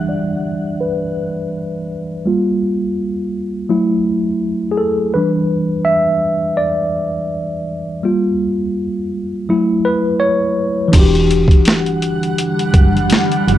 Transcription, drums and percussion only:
10.93 kick, closed hi-hat, crash
11.15 closed hi-hat
11.31 closed hi-hat
11.48 kick, closed hi-hat
11.65 snare, closed hi-hat
11.86 closed hi-hat
12.02 closed hi-hat
12.23 closed hi-hat
12.38 closed hi-hat
12.59 closed hi-hat
12.74 kick, closed hi-hat
12.97 closed hi-hat
13.10 snare, closed hi-hat
13.32 closed hi-hat
13.48 closed hi-hat

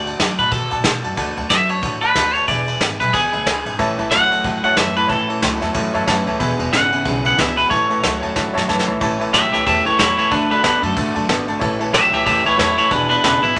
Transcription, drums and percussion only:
0.07 ride
0.20 snare, ride
0.39 ride
0.52 kick, ride
0.71 ride
0.84 kick, snare, ride
1.04 ride
1.17 kick, ride
1.37 ride
1.50 snare, ride
1.69 ride
1.83 kick, ride
2.02 ride
2.15 kick, snare, ride
2.34 ride
2.48 kick, ride
2.68 ride
2.81 snare, ride
3.00 snare, ride
3.14 kick, ride
3.33 ride
3.46 snare, ride
3.66 ride
3.79 kick, ride
3.99 ride
4.11 snare, ride
4.31 ride
4.44 kick, ride
4.64 ride
4.77 kick, snare, ride
4.96 ride
5.09 kick, ride
5.29 ride
5.42 snare, ride
5.62 snare, ride
5.74 kick, ride
5.94 ride
6.08 kick, snare, ride
6.27 ride
6.40 kick, ride
6.59 ride
6.73 snare, ride
6.92 ride
7.05 kick, ride
7.25 ride
7.38 kick, snare, ride
7.58 ride
7.71 kick, ride
7.90 ride
8.03 snare, ride
8.23 ride
8.36 kick, snare
8.57 snare
8.69 snare
8.79 snare
9.01 kick, ride
9.21 ride
9.34 snare, ride
9.53 snare, ride
9.67 kick, ride
9.86 ride
9.99 snare, ride
10.18 ride
10.31 kick, ride
10.51 ride
10.64 snare, ride
10.83 ride
10.96 kick, ride
11.15 ride
11.29 snare, ride
11.48 ride
11.61 kick, ride
11.80 ride
11.94 snare, ride
12.13 ride
12.26 kick, ride
12.46 ride
12.59 snare, ride
12.78 ride
12.91 kick, ride
13.11 ride
13.24 snare, ride
13.43 ride

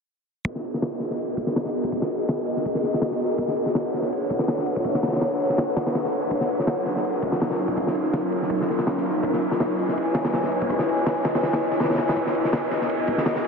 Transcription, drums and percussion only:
0.45 kick, ride
0.56 snare
0.64 ride
0.74 snare
0.82 snare, ride
1.00 snare, ride
1.10 snare
1.19 ride
1.37 kick, ride
1.47 snare
1.56 snare, ride
1.65 snare
1.73 ride
1.84 kick
1.92 kick, ride
2.02 snare
2.11 ride
2.28 snare, ride
2.46 ride
2.57 snare
2.65 kick, ride
2.75 snare
2.83 snare, ride
2.94 snare
3.02 snare, ride
3.11 snare
3.20 ride
3.29 ride
3.38 kick, ride
3.48 snare
3.56 ride
3.66 snare
3.75 snare, ride
3.94 snare, ride
4.02 snare
4.13 ride
4.29 kick, ride
4.39 snare
4.48 snare, ride
4.58 snare
4.66 ride
4.76 kick
4.84 kick, ride
4.95 snare
5.03 snare, ride
5.07 snare, ride
5.13 snare, ride
5.16 snare, ride
5.21 snare, ride
5.40 ride
5.50 snare
5.58 snare, ride
5.76 snare, ride
5.86 snare, ride
5.95 snare, ride
6.05 snare
6.13 ride
6.23 ride
6.31 kick, ride
6.41 snare
6.49 ride
6.59 snare
6.67 snare, ride
6.86 snare, ride
6.96 snare
7.04 ride
7.23 kick, ride
7.32 snare
7.40 snare, ride
7.50 snare
7.59 ride
7.68 kick
7.77 kick, ride
7.87 snare
7.95 ride
8.13 snare, ride
8.32 ride
8.42 snare
8.50 kick, ride
8.61 snare
8.68 snare, ride
8.79 snare
8.87 snare, ride
8.97 snare
9.06 ride
9.16 ride
9.23 kick, ride
9.33 snare
9.42 ride
9.51 snare
9.60 snare, ride
9.79 ride
9.88 snare
9.97 ride
10.15 snare, ride
10.25 snare, ride
10.33 snare, ride
10.43 snare
10.52 ride
10.62 kick
10.70 kick, ride
10.79 snare
10.89 ride
11.06 snare, ride
11.25 snare, ride
11.35 snare, ride
11.43 snare, ride
11.53 snare, ride
11.71 snare, ride
11.80 snare, ride
11.84 snare, ride
11.90 snare, ride
11.94 snare, ride
11.98 snare, ride
12.08 snare, ride
12.16 kick, ride
12.27 snare
12.35 ride
12.45 snare
12.53 snare, ride
12.71 snare, ride
12.81 snare
12.89 ride
13.07 kick, ride
13.18 snare
13.26 snare, ride
13.36 snare
13.44 ride

